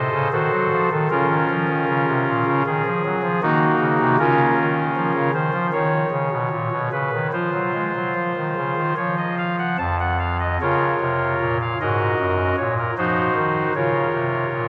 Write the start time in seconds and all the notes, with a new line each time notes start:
Already playing: A4 C5 D#5
0.12 C#3
0.32 D#3 F#4 A4 C5
0.52 F#3
0.72 F3
0.91 D#3 A4
1.10 C#3 C#4 F4 A#4
1.30 D#3
1.50 F3
1.68 D#3
1.89 C#3
2.07 C3
2.28 A#2
2.46 C#3
2.66 D#3 G#4
2.86 F3
3.05 F#3
3.23 F3
3.42 D#3 A#3 D#4 F#4
3.80 C#3
3.99 C3
4.19 C#3 C#4 F4 A#4
4.58 D#3
4.96 F3
5.15 C#3
5.34 D#3 C5
5.53 F3
5.73 D#3 C#5
6.11 C#3
6.31 B2
6.51 A#2
6.71 B2
6.92 C#3 B4
7.12 D#3
7.33 F3 F4 C5
7.54 F#3
7.73 G#3
7.96 F#3
8.15 F3
8.36 D#3
8.56 C#3
8.77 D#3
8.97 F3 C#5
9.17 D#5
9.38 F5
9.58 F#5
9.78 F2 A5
9.99 F#5
10.19 F5
10.40 D#5
10.61 C#3 F4 A#4 C#5
11.01 C3
11.40 A#2
11.61 F5
11.81 G#2 F#4 A#4 D#5
12.19 F#2
12.58 A#2 C#5
12.78 A#4
12.98 F3 D#4 F#4 C5
13.36 D#3
13.75 C#3 F4 A#4 C#5
14.13 C3
14.53 A#2